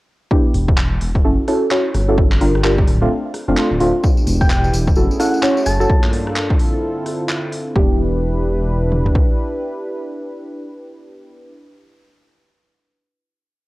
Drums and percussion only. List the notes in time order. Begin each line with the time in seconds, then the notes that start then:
0.31 kick
0.55 open hi-hat
0.69 kick
0.78 clap
1.01 open hi-hat
1.15 kick
1.48 cross-stick, open hi-hat
1.71 clap
1.94 cross-stick, open hi-hat
2.17 kick
2.32 clap
2.41 open hi-hat
2.55 cross-stick
2.64 clap
2.78 kick
2.87 open hi-hat
3.34 cross-stick, open hi-hat
3.57 clap
3.80 open hi-hat
4.03 kick, tambourine
4.17 tambourine
4.27 open hi-hat, tambourine
4.41 kick, tambourine
4.50 clap, tambourine
4.64 tambourine
4.73 open hi-hat, tambourine
4.87 kick, tambourine
4.95 tambourine
5.11 tambourine
5.20 cross-stick, open hi-hat, tambourine
5.34 tambourine
5.43 clap, tambourine
5.57 tambourine
5.66 cross-stick, open hi-hat, tambourine
5.81 tambourine
5.90 kick
6.04 clap
6.13 open hi-hat
6.27 cross-stick
6.36 clap
6.50 kick
6.59 open hi-hat
7.06 cross-stick, open hi-hat
7.29 clap
7.52 open hi-hat
7.76 kick
8.92 mid tom
9.06 floor tom
9.15 kick